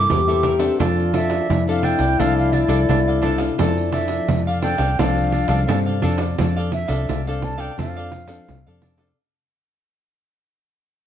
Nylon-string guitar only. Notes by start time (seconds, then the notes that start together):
Already playing: A#3 E4 A4
0.09 G2
0.28 A#3 E4 A4
0.59 C4 D4 A4
0.80 F3
1.13 C4 D4 A4
1.50 C3
1.68 C4 D4 A4
2.19 F3 C4 D4 A4
2.68 C4 D4 A4
2.90 C3
3.23 C4 D4 A4
3.61 F3 C4 D4 A4
3.93 C4 D4 A4
4.30 C3
4.63 C4 D4 A4
4.79 C4 D4 A4
4.99 F3 C4 D4 A4
5.49 C4 D4 A4
5.69 C3
6.03 C4 D4 A4
6.40 F3 C4 D4 A4
6.89 C4 D4 A4
7.09 C3
7.28 C4 D4 A4
7.58 C4 D4 A4
7.78 F3 C4 D4 A4
8.28 C4 D4 A4
8.49 C3
8.67 C4 D4 A4
8.97 C4 D4 A4